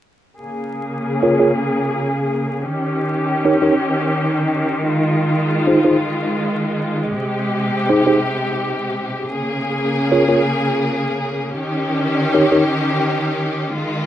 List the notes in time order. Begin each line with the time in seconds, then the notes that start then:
0.40 C#3 A#3 G#4
1.23 F4 G#4 A#4 C#5
1.39 F4 G#4 A#4 C#5
2.62 D#3 C#4 G4
3.45 D#4 G4 A#4 C#5
3.62 D#4 G4 A#4 C#5
4.84 G#3 F4
5.67 D#4 F4 G#4 C5
5.84 D#4 F4 G#4 C5
7.07 C3 G4
7.89 D#4 G4 G#4 C5
8.07 D#4 G4 G#4 C5
9.28 C#3 A#3 G#4
10.12 F4 G#4 A#4 C#5
10.29 F4 G#4 A#4 C#5
11.51 D#3 C#4 G4
12.34 D#4 G4 A#4 C#5
12.52 D#4 G4 A#4 C#5
13.73 D#3 G#3 F4